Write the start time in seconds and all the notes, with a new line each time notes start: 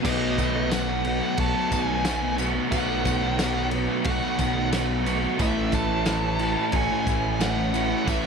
0.03 B1 B2 D#3 F#3 A3 B3 F#4 D#5, kick, crash, tambourine
0.36 B2 D#3 F#3 A3 B3 F#4, kick, tambourine, crash
0.54 F#3 B3
0.69 B2 D#3 F#3 A3 B3 F#4 F#5, snare, tambourine, crash
0.73 B3
0.87 A3 B3 F#4
1.04 B2 F#3 B3 D#4, muted overdriven electric guitar stroke, crash
1.20 A3 B3 F#4
1.37 B1 F#4 A5, kick, tambourine, crash
1.54 F#3 A3 B3 F#4
1.69 B1 B2 D#3 F#3 A3 B3 D#4 F#4 G#5, kick, tambourine, crash
1.73 B3
1.88 F#3 B3
2.04 B2 D#3 F#3 A3 B3 F#4, snare, tambourine, crash
2.08 B3
2.22 F#3 B3
2.36 B2 D#3 F#3 A3 B3 F#4, tambourine, crash
2.41 B3
2.53 F#3 A3 B3 F#4
2.70 B1 B2 D#3 F#3 A3 B3 F#4 F#5, kick, tambourine, crash
2.74 F#3
3.03 B2 D#3 F#3 A3 B3 F#4, kick, tambourine, crash
3.22 F#3 B3
3.36 B2 D#3 F#3 A3 B3 F#4, snare, tambourine, crash
3.40 F#3 B3
3.53 A3 B3 F#4
3.71 B2 F#3 B3 D#4, muted overdriven electric guitar stroke, crash
3.87 A3 B3 F#4
4.04 B1 F#4 F#5, kick, tambourine, crash
4.20 A3 B3 F#4
4.24 F#3
4.37 B1 B2 D#3 F#3 A3 B3 D#4 F#4, kick, tambourine, crash
4.42 B3
4.55 F#3 B3
4.71 B2 D#3 F#3 A3 B3 F#4, snare, tambourine, crash
4.88 F#3 B3
5.04 B2 D#3 F#3 A3 B3 F#4, tambourine, crash
5.20 A3 B3 F#4
5.25 F#3
5.37 A1 A2 E3 A3 C#4 E4, kick, tambourine, crash
5.42 E5
5.72 A2 E3 A3 C#4 E4 A5, kick, tambourine, crash
5.76 A3
5.89 E3 A3
6.05 A2 E3 A3 C#4 E4, snare, tambourine, crash
6.23 A3 C#4 E4
6.37 A2 E3 A3 C#4, muted overdriven electric guitar stroke, crash
6.57 A3 C#4 E4
6.72 A1 F#4, kick, tambourine, crash
6.76 G#5
6.89 E3 A3 C#4 E4
6.93 A3
7.05 A1 A2 E3 A3 C#4 E4, kick, tambourine, crash
7.23 E3 A3
7.39 A2 E3 A3 C#4 E4 F#5, snare, tambourine, crash
7.57 E3 A3
7.72 A2 E3 A3 C#4 E4 F#4, tambourine, crash
7.89 E3 A3 C#4 E4
8.05 A1 A2 E3 A3 C#4 E4, kick, tambourine, crash
8.10 E5